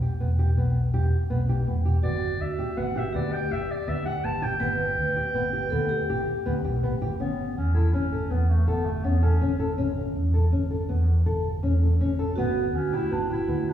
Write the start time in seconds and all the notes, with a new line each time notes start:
0.02 G4
0.20 E1 B3
0.39 G4
0.56 B1 B3
0.93 E1 G4
1.30 B1 B3
1.49 G4
1.67 E1 B3
1.85 G4
2.03 G1 B3 F#4 D5
2.40 D2 E5
2.59 G4
2.77 G1 B3 F#5
2.96 G4 E5
3.13 D2 B3 G4 D5
3.33 G5
3.51 G1 G4 E5
3.71 D5
3.87 D2 B3 E5
4.06 G4 F#5
4.23 G1 B3 A5
4.42 G4 G5
4.60 G1 B3 B4
4.97 D2
5.16 G4
5.34 G1 B3
5.53 G4
5.70 D2 B3 A4
5.89 G4
6.09 G1 G4
6.46 D2 B3
6.64 B1 G4
6.83 A1 B3
7.02 G1 G4
7.20 G1 B3 C#4
7.57 E2 C#4
7.75 E4 A4
7.93 G1 C#4
8.12 A4
8.31 E2 B3
8.50 A3
8.67 G1 B3 A4
8.85 A3
9.04 E2 B3 C#4
9.23 C#4 A4
9.41 G1 C#4
9.60 A4
9.78 G1 C#4
10.16 E2
10.34 A4
10.52 G1 C#4
10.71 A4
10.89 E2 B3
11.26 G1 A4
11.63 E2 C#4
11.82 A4
11.99 G1 C#4
12.19 A4
12.36 G1 B3 F#4
12.73 D2 C#4
12.93 E4 G4
13.11 G1 B3 D4
13.30 E4 G4
13.48 D2 B3
13.70 D4